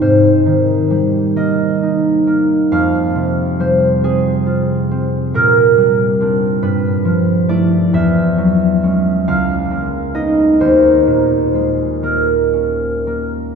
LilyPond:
<<
  \new Staff \with { instrumentName = "Harp" } { \time 6/8 \key ees \dorian \tempo 4. = 45 <aes' c''>4. ees''4. | f''4 c''8 aes'4. | bes'4. b'4 d''8 | e''4. f''4 ees''8 |
c''4. bes'4. | }
  \new Staff \with { instrumentName = "Harp" } { \time 6/8 \key ees \dorian <aes, g c' ees'>8 ees8 g8 bes8 ees'8 bes8 | f,8 c8 g8 c'8 f'8 c'8 | bes,8 g8 <c' d'>8 g,8 f8 <a e'>8 | e,8 fis8 <gis cis'>8 des,8 bes8 <ces' ees'>8 |
ees,8 bes,8 aes8 bes8 des'8 bes8 | }
>>